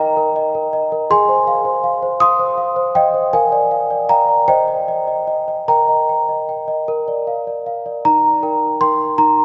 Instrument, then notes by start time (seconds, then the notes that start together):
celesta
Already playing: D#4 A#4 G5 A#5
0.00 D#5
0.17 A#4
0.36 D#5
0.55 A#4
0.73 D#5
0.92 A#4
1.10 G#4 G#5 C6
1.29 C5
1.47 F5
1.65 C5
1.84 F5
2.02 C5
2.20 F5 C6 D#6
2.39 C5
2.58 F5
2.76 C5
2.95 D#5 F5 G5
3.14 C5
3.33 A#4 F5 G#5
3.52 D5
3.71 F5
3.91 D5
4.09 F5 G5 A#5
4.28 D5
4.48 C5 D#5 G5
4.68 D#5
4.88 D#5
5.07 D#5
5.27 D#5
5.48 D#5
5.68 A#4 G5 A#5
5.88 D#5
6.09 G5
6.29 D#5
6.49 G5
6.68 D#5
6.88 A#4
7.08 D5
7.27 F5
7.47 D5
7.66 F5
7.86 D5
8.05 D#4 A#5
8.43 A#4 G5
8.81 A#4 G5 C6
9.18 D#4 A#5